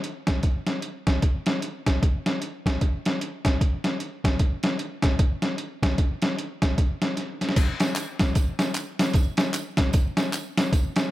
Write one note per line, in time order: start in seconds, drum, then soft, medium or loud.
0.04 closed hi-hat medium
0.27 kick medium
0.27 snare loud
0.27 closed hi-hat medium
0.43 kick loud
0.43 closed hi-hat medium
0.67 snare medium
0.67 closed hi-hat medium
0.82 closed hi-hat medium
1.07 kick medium
1.07 snare loud
1.07 closed hi-hat medium
1.22 kick loud
1.22 closed hi-hat medium
1.46 snare loud
1.46 closed hi-hat medium
1.62 closed hi-hat medium
1.86 kick medium
1.86 snare loud
1.86 closed hi-hat medium
2.03 kick loud
2.03 closed hi-hat medium
2.26 snare medium
2.26 closed hi-hat medium
2.42 closed hi-hat medium
2.66 kick medium
2.66 snare loud
2.66 closed hi-hat medium
2.81 kick loud
2.81 closed hi-hat medium
3.05 snare loud
3.05 closed hi-hat medium
3.21 closed hi-hat medium
3.45 kick medium
3.45 snare loud
3.45 closed hi-hat medium
3.61 kick loud
3.61 closed hi-hat medium
3.84 snare medium
3.84 closed hi-hat medium
4.00 closed hi-hat medium
4.24 kick medium
4.24 snare loud
4.24 closed hi-hat medium
4.39 kick loud
4.39 closed hi-hat medium
4.63 snare loud
4.63 closed hi-hat medium
4.79 closed hi-hat medium
5.02 kick medium
5.02 snare loud
5.02 closed hi-hat medium
5.19 kick loud
5.19 closed hi-hat medium
5.42 snare medium
5.42 closed hi-hat medium
5.58 closed hi-hat medium
5.83 kick medium
5.83 snare loud
5.83 closed hi-hat medium
5.98 kick medium
5.98 closed hi-hat medium
6.22 snare loud
6.22 closed hi-hat medium
6.38 closed hi-hat medium
6.62 kick medium
6.62 snare loud
6.62 closed hi-hat medium
6.78 kick loud
6.78 closed hi-hat medium
7.02 snare medium
7.02 closed hi-hat medium
7.17 snare soft
7.17 closed hi-hat medium
7.41 snare medium
7.41 closed hi-hat medium
7.49 snare medium
7.56 kick loud
7.56 closed hi-hat medium
7.56 crash loud
7.56 tambourine medium
7.80 snare loud
7.80 closed hi-hat medium
7.80 tambourine medium
7.96 clap medium
7.96 closed hi-hat medium
7.96 tambourine medium
8.19 kick medium
8.19 snare loud
8.19 closed hi-hat medium
8.19 tambourine soft
8.35 kick loud
8.35 closed hi-hat medium
8.35 tambourine medium
8.59 snare loud
8.59 closed hi-hat medium
8.59 tambourine medium
8.74 clap medium
8.74 closed hi-hat medium
8.74 tambourine medium
8.99 snare loud
8.99 closed hi-hat medium
8.99 tambourine medium
9.13 kick loud
9.13 closed hi-hat medium
9.13 tambourine medium
9.37 snare loud
9.37 closed hi-hat medium
9.37 tambourine medium
9.54 clap medium
9.54 closed hi-hat medium
9.54 tambourine medium
9.77 kick medium
9.77 snare loud
9.77 closed hi-hat medium
9.77 tambourine soft
9.93 kick loud
9.93 closed hi-hat medium
9.93 tambourine medium
10.17 snare loud
10.17 closed hi-hat medium
10.17 tambourine medium
10.33 clap medium
10.33 closed hi-hat medium
10.33 tambourine medium
10.57 snare loud
10.57 closed hi-hat medium
10.57 tambourine medium
10.73 kick loud
10.73 closed hi-hat medium
10.73 tambourine medium
10.96 snare loud
10.96 closed hi-hat medium
10.96 tambourine medium